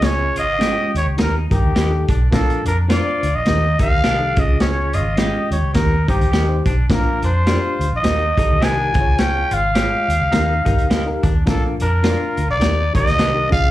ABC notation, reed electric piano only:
X:1
M:4/4
L:1/16
Q:"Swing" 1/4=105
K:Eblyd
V:1 name="Reed electric piano"
[_DF_A]3 z [_A,DF]2 z2 [EGB] z [EGB]2 z [EG=A]2 z | [DFB]2 z2 [DFc]2 z2 [EGB] z [EGB]2 z [EGA] [_DF_A]2- | [_DF_A]3 z [_A,DF]2 z2 [EGB] z [EGc]2 z [EGc]2 z | [DFB]2 z2 [DFG]2 z2 [EGB] z [EGA]2 z [EGB] [F_Ac_d]2- |
[F_Ac_d]3 z [_A,Fd]2 z2 [EGB] z [EGB]2 z [EGB]2 z | [DFB]2 z2 [DFB]2 z2 [EGB] z [EGB]2 z [EGB] [_DF_A]2 |]
V:2 name="Reed electric piano" clef=bass
_D,4 z4 E,6 z2 | B,,6 z2 E,6 _D,2- | _D,4 z4 E,6 z2 | B,,6 z2 E,6 _D,2- |
_D,4 z12 | B,,6 z2 E,6 _D,2 |]